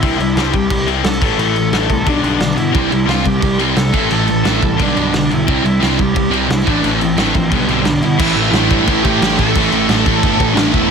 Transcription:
Already playing: E4
0.02 C2 C3 G3 C4, kick, crash
0.18 C2 C3 G3 E4, crash
0.35 C2 C3 G3 C4, snare, crash
0.54 C2 C3 G3 G4, kick, crash
0.70 C2 C3 G3, kick, crash
0.87 C3 G3 C4, crash
1.04 C2 C3 G3 A4, snare, crash
1.21 A1 A2 E3 A3 A4, kick, crash
1.38 A1 A2 E3 A3, crash
1.56 A2 E3, crash
1.72 A1 A2 E3 A3, snare, crash
1.90 C2 A2 E3, kick, crash
2.06 B1 G2 D3 G3 D4, kick, crash
2.23 B1 G2 D3 G3, crash
2.40 B1 G2 D3 D4, snare, crash
2.55 G2 B2 D3 E4, crash
2.72 C2 C3 G3 C4, kick, crash
2.89 C2 C3 G3 E4, crash
3.06 C2 C3 G3 C4 F4, snare, crash
3.23 C2 C3 G3 G4, kick, crash
3.41 C2 C3 G3, kick, crash
3.59 C3 G3 C4, crash
3.76 C2 C3 G3 A4, snare, crash
3.93 A1 A2 E3 A3, kick, crash
4.09 A1 A2 E3 A3 A4, crash
4.27 A2 E3, crash
4.44 A1 A2 E3 A3, snare, crash
4.61 C2 A2 E3, kick, crash
4.77 B1 G2 D3 G3, kick, crash
4.82 G3 D4
4.96 B1 G2 D3 G3, crash
5.13 B1 G2 D3, snare, crash
5.17 D4
5.30 B1 G2 D3 E4, crash
5.47 C2 C3 G3 C4, kick, crash
5.63 C2 C3 G3 E4, crash
5.80 C2 C3 G3 C4, snare, crash
5.98 C2 C3 G3, kick, crash
6.02 G4
6.14 C2 C3 G3, kick, crash
6.31 C3 G3 C4, crash
6.49 C2 C3 G3 E4, snare, crash
6.67 A1 A2 E3 A3 D4, kick, crash
6.83 A1 A2 E3 A3 C4, crash
7.01 A2 E3, crash
7.17 A1 A2 E3 A3, snare, crash
7.35 A#1 A2 E3, kick, crash
7.50 B1 G2 D3 G3, kick, crash
7.55 B3
7.68 B1 G2 D3 G3 C4, crash
7.85 B1 G2 D3 D4, snare, crash
8.01 G2 B2 D3 E4, crash
8.18 A1 A2 E3 A3 C4 E4, kick, crash
8.36 A1 A2 E3 A3 C4 E4, crash
8.51 A1 A2 E3 A3 C4 E4, snare, crash
8.70 G2 A2 E3 A3 C4 E4, kick, crash
8.87 A1 A2 E3 A3 C4 E4, kick, crash
9.03 A2 E3 A3 C4 E4 G4, kick, crash
9.21 A1 A2 E3 A3 C4 E4, snare, crash
9.38 A1 A2 E3 A3 C4 E4 A4, kick, crash
9.55 A1 A2 E3 A3 C4 E4, kick, crash
9.71 A1 A2 E3 A3 C4 E4, crash
9.89 A1 A2 E3 A3 C4 E4, snare, crash
10.06 A1 A2 E3 A3 C4 E4, kick, crash
10.23 G1 A2 E3 A3 C4 E4, kick, crash
10.39 A1 A2 E3 A3 C4 E4, kick, crash
10.54 A1 A2 E3 A3 C4 D4 E4, snare, crash
10.71 E1 A2 E3 A3 C4 E4, kick, crash

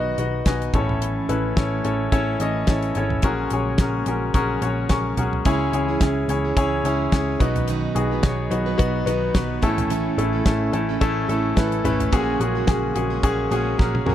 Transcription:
Already playing: B1 B2 D#3 F#3 B3 D#4 F#4 B4 D#5 F#5
0.18 B1 D#4 F#4 B4 D#5, closed hi-hat
0.46 B1 D#4 F#4 B4 D#5 G#5, kick, snare, closed hi-hat
0.62 closed hi-hat
0.74 A1 A2 E3 A3 C#4 E4 A4 C#5 A5, kick, closed hi-hat, floor tom
0.89 floor tom
1.02 closed hi-hat
1.29 A1 C#4 E4 A4 B4, closed hi-hat
1.56 A1 C#4 E4 A4 C#5, kick, snare, closed hi-hat
1.85 A1 C#4 E4 A4 C#5, closed hi-hat
2.12 A1 C#4 E4 A4 C#5, kick, closed hi-hat
2.40 A1 C#4 E4 A4 D#5, closed hi-hat
2.67 A1 C#4 E4 A4 C#5, kick, snare, closed hi-hat
2.82 closed hi-hat
2.95 G#1 C#4 E4 A4 C#5, closed hi-hat
3.10 floor tom
3.22 A#1 A#2 C#3 F#3 G#3 A#3 C#4 F#4 G#4 A#4, kick, closed hi-hat
3.50 A#1 C#4 F#4 G#4 C#5, closed hi-hat
3.78 A#1 C#4 F#4 G#4 A#4, kick, snare, closed hi-hat
4.06 A#1 C#4 F#4 G#4 A#4, closed hi-hat
4.34 A#1 C#4 F#4 G#4 A#4, kick, closed hi-hat
4.62 A#1 C#4 F#4 G#4 C#5, closed hi-hat
4.89 A#1 C#4 F#4 G#4 A#4 C#6, kick, snare, closed hi-hat
5.17 B1 C#4 F#4 G#4 A#4 F#5, closed hi-hat, floor tom
5.33 floor tom
5.45 C#2 C#3 E3 G#3 C#4 E4 G#4 C#5, kick, closed hi-hat
5.73 C#2 C#4 E4 G#4 C#5, closed hi-hat
5.88 C#4 E4 G#4
6.01 C#2 C#4 E4 G#4 C#5, kick, snare, closed hi-hat
6.28 C#2 C#4 E4 G#4 C#5, closed hi-hat
6.45 C#4 E4 G#4
6.57 C#2 C#4 E4 G#4 C#5, kick, closed hi-hat
6.84 C#2 G#3 C#4 E4 G#4 C#5, closed hi-hat
7.12 C#2 G#3 C#4 E4 G#4 C#5, kick, snare, closed hi-hat
7.40 B1 B2 D#3 F#3 B3 D#4 F#4 B4, kick, closed hi-hat
7.56 closed hi-hat, floor tom
7.68 B2 D#3 F#3 B3 D#4 B4, closed hi-hat
7.95 B1 B3 D#4 F#4 G#4, closed hi-hat
8.11 F#3 B3 D#4 B4
8.23 B1 B3 D#4 F#4 C#5, kick, snare, closed hi-hat
8.51 B1 B3 D#4 F#4 B4, closed hi-hat
8.66 F#3 B3 D#4 B4
8.78 B1 B3 D#4 F#4 B4, kick, closed hi-hat
9.06 B1 F#3 B3 D#4 F#4 B4, closed hi-hat
9.34 B1 F#3 B3 D#4 F#4 B4, kick, snare, closed hi-hat
9.62 A1 A2 E3 A3 C#4 E4 A4, kick, closed hi-hat
9.78 closed hi-hat, floor tom
9.90 A2 E3 A3 C#4 E4 A4, closed hi-hat
10.18 A1 A3 C#4 E4 A4, closed hi-hat
10.33 A3 C#4 E4 A4
10.46 A1 A3 C#4 E4 A4, kick, snare, closed hi-hat
10.73 A1 A3 C#4 E4 A4, closed hi-hat
10.89 A3 C#4 E4 A4
11.01 A1 A3 C#4 E4 A4, kick, closed hi-hat
11.29 A1 A3 C#4 E4 A4, closed hi-hat
11.56 A1 A3 C#4 E4 A4 B4, kick, snare, closed hi-hat
11.72 closed hi-hat
11.84 G#1 A3 C#4 E4 A4 B4, closed hi-hat, floor tom
12.00 closed hi-hat, floor tom
12.11 A#1 A#2 C#3 F#3 G#3 A#3 C#4 F#4 G#4, kick, closed hi-hat
12.40 A#1 A#3 C#4 F#4 G#4, closed hi-hat
12.55 C#4 F#4 G#4
12.67 A#1 A#3 C#4 F#4 G#4, kick, snare, closed hi-hat
12.95 A#1 A#3 C#4 F#4 G#4, closed hi-hat
13.10 C#4 F#4 G#4
13.23 A#1 A#3 C#4 F#4 G#4, kick, closed hi-hat
13.50 A#1 A#3 C#4 F#4 G#4, closed hi-hat
13.78 A#1 A#3 C#4 F#4 G#4 A#4, kick, snare
13.95 high tom
14.06 A#1 A#3 C#4 F#4 G#4 A#4, mid tom

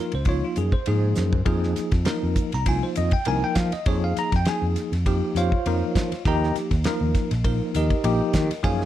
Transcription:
Already playing: F3 A#3 D#4 F4 A#4
0.12 C#2 C5, ride
0.25 F3 A#3 D#4 F4 C#5, kick, ride
0.45 F4
0.56 F#2 G#4, hi-hat pedal, ride
0.72 C5, kick
0.86 G#2 F3 A#3 D#4 G#4, ride
1.15 F#2, snare, hi-hat pedal
1.33 floor tom
1.46 F2 F3 A#3 D#4 G#4, kick, ride
1.63 snare
1.76 muted fretless electric bass stroke, snare, hi-hat pedal, ride
1.92 F2, kick, snare, ride
2.05 F3 A#3 D#4 A#4, snare, ride
2.23 F2
2.36 kick, hi-hat pedal, ride
2.52 C2 A#5, snare, ride
2.66 F3 A#3 D#4 F4 G#5, kick, ride
2.83 C5
2.96 F2 D#5, hi-hat pedal, ride
3.11 G5, kick, ride
3.25 C2 F3 A#3 D#4 A#4 G#5, ride
3.44 G5
3.55 F3 F5, kick, snare, hi-hat pedal, ride
3.72 D#5, muted fretless electric bass stroke, snare, ride
3.86 F2 F3 A#3 D#4 G#4 C#5, kick, ride
4.04 F5
4.17 A#5, muted fretless electric bass stroke, snare, hi-hat pedal, ride
4.32 F2, kick, snare, ride
4.36 G5
4.45 F3 A#3 D#4 G#4 G#5, snare, ride
4.62 F2
4.76 snare, hi-hat pedal, ride
4.92 F2, snare, ride
5.06 F3 A#3 D#4 G4, kick, ride
5.35 F2 F4 C5 C#5 F5, hi-hat pedal, ride
5.52 kick
5.66 F2 F3 A#3 D#4 A#4, ride
5.95 F3, kick, snare, hi-hat pedal, ride
6.12 muted fretless electric bass stroke, snare, ride
6.25 D#2 F3 A#3 D#4 G4 A#4 D#5 G5 A#5, kick, ride
6.44 snare
6.56 snare, hi-hat pedal, ride
6.71 D#2, kick, snare, ride
6.84 F3 A#3 D#4 A#4, snare, ride
7.01 D#2
7.15 kick, snare, hi-hat pedal, ride
7.31 A#1, snare, ride
7.44 F3 A#3 D#4 A#4, kick, ride
7.75 D#2 D#4 G4 A#4 D#5, hi-hat pedal, ride
7.90 kick, ride
8.04 A#1 F3 A#3 D#4 G4, ride
8.33 D#3, kick, snare, hi-hat pedal, ride
8.51 muted fretless electric bass stroke, snare, ride
8.63 F#2 F3 A#3 D#4 G#4 C#5 F5 G#5, kick, ride
8.81 snare

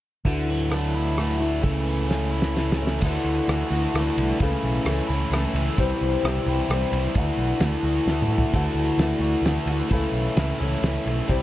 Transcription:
0.25 D2 D3 E3 A3 E4 F#4, kick
0.50 F#3
0.71 E3 A3 D4 E4 F#4, cross-stick
0.95 E4
1.17 E3 A3 E4 F#4, cross-stick
1.38 A3 D4 E4 F#4
1.62 C#2 C#3 E3 A3 C#4 A4, kick
1.85 E3
2.09 E3 A3 C#4 A4, snare
2.32 E4
2.42 snare
2.56 E3 A3 C#4 A4, snare
2.72 snare
2.79 A3 C#4 A4
2.87 snare
3.01 D2 D3 E3 A3 D4 E4 F#4, kick, crash
3.25 D2
3.48 D2 E3 A3 E4 F#4, cross-stick, ride
3.71 D2 D3 D4 E4 F#4
3.75 A3
3.94 D2 E3, cross-stick, ride
3.98 A3 E4 F#4
4.17 C2, ride
4.40 C#2 C#3 E3 A3 C#4 E4 A4, kick, ride
4.63 B1
4.85 C#2 E3 A3 C#4 A4, cross-stick, ride
5.07 C#2 C#3 E3 A3 C#4 E4 A4
5.13 A3 C#4
5.30 C#2 E3 A3 C#4, cross-stick, ride
5.35 A4
5.54 C#2, ride
5.78 C2 C3 E3 G3 C4 E4 G4, kick, ride
6.01 C2
6.23 C2 E3 C4 E4 G4, cross-stick, ride
6.46 C2 G3 C4 E4 G4
6.51 C3 E3
6.69 C2 E3 C4 E4 G4, cross-stick, ride
6.92 C2, ride
7.15 D2 D3 E3 A3 D4 E4 F#4, kick, ride
7.37 B1
7.60 D2 E3 A3 E4 F#4, snare, ride
7.83 D2 A3 D4 F#4
7.88 D3
8.06 D2 E3 A3 E4 F#4, snare
8.22 mid tom
8.28 A2 F#4
8.32 A3 E4
8.38 floor tom
8.53 D2 D3 E3 A3 D4 E4 F#4, kick, ride
8.74 D2
8.98 D2 E3 A3, snare, ride
9.02 E4 F#4
9.19 D2 D4 F#4
9.24 D3 A3
9.42 D2, ride
9.46 E3 A3 E4 F#4, snare
9.66 D2 F#4, ride
9.70 A3 E4
9.91 C#2 C#3 E3 A3 C#4 E4 A4, kick, ride
10.12 B1
10.37 C#2 E3 A3 C#4, snare, ride
10.41 A4
10.59 C#2 C#3 E3 C#4 E4 A4
10.63 A3
10.82 C#2 E3 A3 C#4 A4, snare, ride
11.06 B1 A3 C#4 A4, ride
11.28 C2 C3 E3 G3 C4 E4 G4, kick, ride

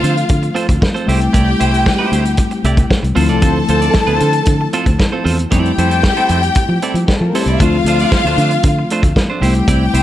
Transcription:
Already playing: F3 A3 C4 F4 F5
0.03 D3 C4 F4 A4 C5, closed hi-hat
0.17 muted clean electric guitar stroke, closed hi-hat
0.29 D3, muted clean electric guitar stroke, kick, closed hi-hat
0.43 muted clean electric guitar stroke, closed hi-hat
0.55 C4 F4 A4 C5, closed hi-hat
0.68 D2, muted clean electric guitar stroke, kick, closed hi-hat
0.81 muted clean electric guitar stroke, kick, snare
0.94 C4 F4 A4 C5, closed hi-hat
1.06 C2 G3 A3 C4 E4 G4 C5 G5, snare, open hi-hat
1.21 muted clean electric guitar stroke, closed hi-hat
1.33 C2 A3 E4 G4 D5, kick, closed hi-hat
1.60 C2 A3 E4 G4 C5, closed hi-hat
1.72 A3 E4 G4 C5, closed hi-hat
1.86 kick, snare
1.99 A3 E4 G4 C5
2.12 D2 A3 E4 G4 C5, closed hi-hat
2.25 muted clean electric guitar stroke, closed hi-hat
2.37 muted clean electric guitar stroke, kick, closed hi-hat
2.51 muted clean electric guitar stroke, closed hi-hat
2.64 C2 A3 E4 G4 D5, closed hi-hat
2.77 muted clean electric guitar stroke, kick, closed hi-hat
2.90 muted clean electric guitar stroke, kick, snare
3.03 C2, muted clean electric guitar stroke, closed hi-hat
3.15 D2 F3 A3 C4 E4 F4 A4 C5 A5, open hi-hat
3.29 C2 C4 F4 A4 D5, closed hi-hat
3.42 D2 C4 F4 A4 C5, kick, closed hi-hat
3.68 D2 C4 F4 A4 C5, closed hi-hat
3.81 C4 F4 A4 D5, closed hi-hat
3.94 kick, snare
4.07 D2 C4 F4 A4 C5, closed hi-hat
4.20 D3 C4 F4 A4 C5, closed hi-hat
4.33 muted clean electric guitar stroke, closed hi-hat
4.45 D3, muted clean electric guitar stroke, kick, closed hi-hat
4.61 muted clean electric guitar stroke
4.73 C4 F4 A4 C5, closed hi-hat
4.86 D2, muted clean electric guitar stroke, kick, closed hi-hat
4.98 muted clean electric guitar stroke, kick, snare
5.12 C4 F4 A4 C5
5.24 E2 C4 F4 A4 C5, snare, open hi-hat
5.38 muted clean electric guitar stroke, closed hi-hat
5.50 F2 G3 A3 C4 D4 E4 G4 A4 D5 G5, kick, closed hi-hat
5.60 E4
5.65 closed hi-hat
5.78 F2 C4 E4 A4 C5, closed hi-hat
5.91 C4 E4 A4 C5, closed hi-hat
6.03 muted clean electric guitar stroke, kick, snare
6.17 C4 E4 A4 C5, closed hi-hat
6.29 F2 C4 E4 A4 C5, closed hi-hat
6.43 muted clean electric guitar stroke, closed hi-hat
6.55 muted clean electric guitar stroke, kick, closed hi-hat
6.69 F3, muted clean electric guitar stroke
6.82 C4 E4 A4 D5, closed hi-hat
6.94 F3, muted clean electric guitar stroke, closed hi-hat
7.08 G3 G4, muted clean electric guitar stroke, kick, snare
7.16 A3 A4
7.21 F3 A#3, muted clean electric guitar stroke
7.25 A#4
7.33 G3 A3 C4 E4 G4 A4 C5, snare, open hi-hat
7.42 D4 D5
7.46 C2 C4 E4 A4 D5, closed hi-hat
7.50 E4 E5
7.59 D2 F3 A3 C4 D4 F4 C5 F5, kick, closed hi-hat
7.84 D2 A3 D4 F4 C5, closed hi-hat
7.99 A3 D4 F4 D5, closed hi-hat
8.12 muted clean electric guitar stroke, kick, snare
8.24 D2 A3 D4 F4 C5, closed hi-hat
8.38 D3 A3 D4 F4 C5, closed hi-hat
8.51 muted clean electric guitar stroke, closed hi-hat
8.63 D3, muted clean electric guitar stroke, kick, closed hi-hat
8.79 muted clean electric guitar stroke
8.90 A3 D4 F4 C5, closed hi-hat
9.03 D2, muted clean electric guitar stroke, kick, closed hi-hat
9.16 muted clean electric guitar stroke, kick, snare
9.30 A3 D4 F4 C5
9.41 C2 G3 A3 B3 C4 E4 G4 C5 G5, snare, open hi-hat
9.49 C4
9.55 muted clean electric guitar stroke, closed hi-hat
9.68 C2 C4 E4 G4 D5, kick, closed hi-hat
9.94 C2 C4 E4 G4 C5, closed hi-hat

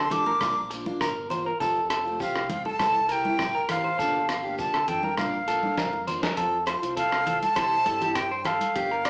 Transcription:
Already playing: C6
0.10 A1 F3 A#3 D4 G4 A4 D6, closed hi-hat, high conga, low conga
0.26 A#4, high conga
0.41 A#1 F3 A#3 D4 F4, kick, cross-stick, high conga, shekere
0.70 F3 A#3 D4 F4, muted clean electric guitar stroke, closed hi-hat, shekere
0.86 A#3 D4 F4, high conga
1.01 G1 A#4, kick, cross-stick, shekere
1.30 F3 A#3 F4 C5, closed hi-hat, low conga
1.46 A#4
1.60 F1 F3 C4 F4 A4, muted steel-string acoustic guitar stroke, kick, shekere
1.90 A4, cross-stick, closed hi-hat, shekere
2.05 A3 C4 F4
2.20 F3 A3 C4 F4 G4 F5, kick, shekere
2.35 C2, cross-stick
2.49 F1 F3 C4 F4, closed hi-hat, high conga, low conga
2.65 A4 A5, high conga
2.79 C2 E3 C4 E4 A4, muted steel-string acoustic guitar stroke, kick, cross-stick, high conga, shekere
3.09 E3 C4 E4 G4 A#4 G5, closed hi-hat, shekere
3.25 C4 E4 G4, high conga
3.39 A1, kick, cross-stick, shekere
3.55 A#4
3.69 E3 C4 F5, cross-stick, closed hi-hat, low conga, shekere
3.73 G4
3.84 C5
3.99 G1 F3 A#3 D4 A4, kick, shekere
4.29 cross-stick, closed hi-hat, shekere
4.44 A#3 D4 G4
4.58 F3 A#3 D4 A5, kick, shekere
4.74 D2 A4, cross-stick
4.88 F2 F3 A#3 A4 G5, closed hi-hat, low conga
4.92 D4
5.03 A#4, high conga
5.17 A#1 F3 A#3 D4 F5, kick, cross-stick, high conga, shekere
5.47 F3 A#3 A4, closed hi-hat, shekere
5.63 A#3 D4, high conga
5.78 F2 A#4, kick, snare, shekere
5.93 high conga
6.07 F3 A#3 D4 C5, closed hi-hat, low conga, shekere
6.23 A#4, snare
6.37 F2 C4 F4 A4, muted steel-string acoustic guitar stroke, kick, closed hi-hat
6.66 A3 C4 F4 C5, cross-stick, closed hi-hat
6.82 C2 C4 F4, closed hi-hat
6.97 A4 F5, kick, closed hi-hat
7.12 cross-stick
7.26 A3 C4 F4 A4, closed hi-hat, low conga
7.43 A5, closed hi-hat, high conga
7.55 C2 E3 C4 E4 G4 C5, kick, cross-stick, closed hi-hat
7.86 G2 E3 C4 E4 G4 A4, closed hi-hat, high conga
8.01 E4 G4, closed hi-hat, low conga
8.05 C4
8.15 G5, kick, cross-stick, closed hi-hat
8.31 C5
8.45 A4 F5, cross-stick, closed hi-hat, low conga
8.61 closed hi-hat, high conga
8.76 G1 A#3 D4 G4, muted steel-string acoustic guitar stroke, kick, closed hi-hat
8.91 A#4
9.05 F3 D5, cross-stick, closed hi-hat

